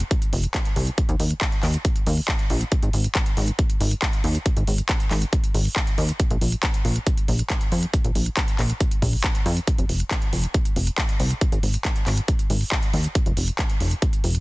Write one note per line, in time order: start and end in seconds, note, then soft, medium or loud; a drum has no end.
0.00 closed hi-hat soft
0.11 kick loud
0.11 closed hi-hat medium
0.22 closed hi-hat medium
0.33 0.47 F1 medium
0.33 open hi-hat loud
0.44 closed hi-hat soft
0.54 kick loud
0.54 clap loud
0.54 closed hi-hat medium
0.65 closed hi-hat medium
0.76 0.90 C2 loud
0.76 open hi-hat loud
0.87 closed hi-hat soft
0.98 kick loud
0.98 closed hi-hat medium
1.09 1.16 D#2 loud
1.09 closed hi-hat soft
1.20 1.34 D#2 medium
1.20 open hi-hat loud
1.31 closed hi-hat soft
1.41 kick loud
1.41 clap loud
1.41 closed hi-hat medium
1.52 closed hi-hat soft
1.63 1.77 D#2 loud
1.63 clap soft
1.63 open hi-hat loud
1.74 closed hi-hat soft
1.85 kick loud
1.85 closed hi-hat medium
1.96 closed hi-hat medium
2.07 2.21 D#2 medium
2.07 open hi-hat loud
2.17 open hi-hat medium
2.28 kick loud
2.28 clap loud
2.28 closed hi-hat medium
2.39 closed hi-hat soft
2.50 2.64 A#1 loud
2.50 open hi-hat loud
2.61 closed hi-hat soft
2.72 kick loud
2.72 closed hi-hat medium
2.83 2.90 G#1 loud
2.83 closed hi-hat soft
2.93 3.08 G#1 medium
2.93 open hi-hat loud
3.04 closed hi-hat soft
3.15 kick loud
3.15 clap loud
3.15 closed hi-hat medium
3.26 closed hi-hat soft
3.37 3.51 G#1 loud
3.37 open hi-hat loud
3.48 closed hi-hat soft
3.59 kick loud
3.59 closed hi-hat medium
3.70 closed hi-hat medium
3.80 3.94 G#1 medium
3.80 open hi-hat loud
3.91 closed hi-hat soft
4.02 kick loud
4.02 clap loud
4.02 closed hi-hat medium
4.13 closed hi-hat soft
4.24 4.38 D#2 loud
4.24 open hi-hat loud
4.35 closed hi-hat soft
4.46 kick loud
4.46 closed hi-hat medium
4.57 4.64 G#1 medium
4.57 closed hi-hat soft
4.67 4.81 G#1 medium
4.67 open hi-hat loud
4.78 closed hi-hat soft
4.89 kick loud
4.89 clap loud
4.89 closed hi-hat medium
5.00 closed hi-hat soft
5.11 5.25 G#1 loud
5.11 clap soft
5.11 open hi-hat medium
5.22 closed hi-hat soft
5.33 kick loud
5.33 closed hi-hat medium
5.44 closed hi-hat medium
5.54 5.68 G#1 medium
5.54 open hi-hat medium
5.65 open hi-hat medium
5.76 kick loud
5.76 clap loud
5.87 closed hi-hat medium
5.98 6.12 D#2 loud
5.98 open hi-hat loud
6.09 closed hi-hat medium
6.20 kick loud
6.20 closed hi-hat medium
6.31 6.38 A#1 loud
6.31 closed hi-hat medium
6.41 6.55 A#1 medium
6.41 open hi-hat loud
6.52 closed hi-hat medium
6.63 kick loud
6.63 clap loud
6.63 closed hi-hat medium
6.74 closed hi-hat medium
6.85 6.99 A#1 loud
6.85 open hi-hat medium
6.96 closed hi-hat medium
7.07 kick loud
7.07 closed hi-hat medium
7.17 closed hi-hat medium
7.28 7.42 A#1 medium
7.28 open hi-hat medium
7.39 closed hi-hat medium
7.50 kick loud
7.50 clap loud
7.50 closed hi-hat medium
7.61 closed hi-hat medium
7.72 7.86 F2 loud
7.72 open hi-hat loud
7.83 closed hi-hat medium
7.94 kick loud
7.94 closed hi-hat medium
8.04 8.11 A#1 medium
8.04 closed hi-hat medium
8.15 8.29 A#1 medium
8.15 open hi-hat loud
8.26 closed hi-hat medium
8.37 kick loud
8.37 clap loud
8.37 closed hi-hat medium
8.48 closed hi-hat medium
8.59 8.73 A#1 loud
8.59 clap soft
8.59 open hi-hat loud
8.70 closed hi-hat medium
8.81 kick loud
8.81 closed hi-hat medium
8.91 closed hi-hat medium
9.02 9.16 A#1 loud
9.02 kick medium
9.02 open hi-hat medium
9.13 open hi-hat medium
9.24 kick loud
9.24 clap loud
9.24 closed hi-hat medium
9.35 closed hi-hat medium
9.46 9.60 F2 loud
9.46 open hi-hat loud
9.57 closed hi-hat medium
9.67 kick loud
9.67 closed hi-hat medium
9.78 9.85 F1 medium
9.78 closed hi-hat medium
9.89 10.03 F1 medium
9.89 open hi-hat loud
10.00 closed hi-hat medium
10.11 kick loud
10.11 clap loud
10.11 closed hi-hat medium
10.22 closed hi-hat medium
10.33 10.47 F1 loud
10.33 open hi-hat loud
10.44 closed hi-hat medium
10.54 kick loud
10.54 closed hi-hat medium
10.65 closed hi-hat medium
10.76 10.90 F1 loud
10.76 open hi-hat loud
10.87 closed hi-hat medium
10.98 kick loud
10.98 clap loud
10.98 closed hi-hat medium
11.09 closed hi-hat medium
11.20 11.34 C2 loud
11.20 open hi-hat loud
11.31 closed hi-hat medium
11.41 kick loud
11.41 closed hi-hat medium
11.52 11.59 G#1 loud
11.52 closed hi-hat soft
11.63 11.77 G#1 medium
11.63 open hi-hat loud
11.74 closed hi-hat soft
11.85 kick loud
11.85 clap loud
11.85 closed hi-hat medium
11.96 closed hi-hat medium
12.06 12.21 G#1 loud
12.06 clap soft
12.06 open hi-hat loud
12.17 closed hi-hat medium
12.28 kick loud
12.28 closed hi-hat medium
12.39 closed hi-hat medium
12.50 12.64 G#1 medium
12.50 open hi-hat loud
12.61 open hi-hat medium
12.72 kick loud
12.72 clap loud
12.83 closed hi-hat medium
12.93 13.07 D#2 loud
12.93 open hi-hat loud
13.04 closed hi-hat medium
13.15 kick loud
13.15 closed hi-hat medium
13.26 13.33 F1 medium
13.26 closed hi-hat soft
13.37 13.51 F1 medium
13.37 open hi-hat loud
13.48 closed hi-hat soft
13.59 kick loud
13.59 clap loud
13.59 closed hi-hat medium
13.70 closed hi-hat medium
13.80 13.94 F1 loud
13.80 open hi-hat loud
13.91 closed hi-hat soft
14.02 kick loud
14.02 closed hi-hat medium
14.13 closed hi-hat soft
14.24 14.38 F1 medium
14.24 open hi-hat loud
14.35 closed hi-hat soft